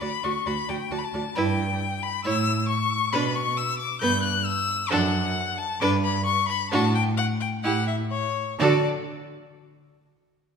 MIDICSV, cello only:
0, 0, Header, 1, 2, 480
1, 0, Start_track
1, 0, Key_signature, 2, "major"
1, 0, Tempo, 444115
1, 1475, Time_signature, 4, 2, 24, 8
1, 4823, Tempo, 452148
1, 7223, Tempo, 470219
1, 11145, End_track
2, 0, Start_track
2, 0, Title_t, "Cello"
2, 0, Program_c, 0, 42
2, 20, Note_on_c, 0, 38, 56
2, 106, Note_off_c, 0, 38, 0
2, 262, Note_on_c, 0, 38, 66
2, 348, Note_off_c, 0, 38, 0
2, 506, Note_on_c, 0, 38, 80
2, 593, Note_off_c, 0, 38, 0
2, 746, Note_on_c, 0, 38, 70
2, 833, Note_off_c, 0, 38, 0
2, 987, Note_on_c, 0, 38, 62
2, 1074, Note_off_c, 0, 38, 0
2, 1231, Note_on_c, 0, 38, 70
2, 1317, Note_off_c, 0, 38, 0
2, 1473, Note_on_c, 0, 43, 94
2, 1873, Note_off_c, 0, 43, 0
2, 2430, Note_on_c, 0, 45, 89
2, 2828, Note_off_c, 0, 45, 0
2, 3382, Note_on_c, 0, 47, 87
2, 3783, Note_off_c, 0, 47, 0
2, 4336, Note_on_c, 0, 43, 89
2, 4738, Note_off_c, 0, 43, 0
2, 5291, Note_on_c, 0, 42, 102
2, 5693, Note_off_c, 0, 42, 0
2, 6251, Note_on_c, 0, 43, 103
2, 6656, Note_off_c, 0, 43, 0
2, 7216, Note_on_c, 0, 45, 98
2, 7607, Note_off_c, 0, 45, 0
2, 8153, Note_on_c, 0, 45, 85
2, 8557, Note_off_c, 0, 45, 0
2, 9130, Note_on_c, 0, 50, 105
2, 9400, Note_off_c, 0, 50, 0
2, 11145, End_track
0, 0, End_of_file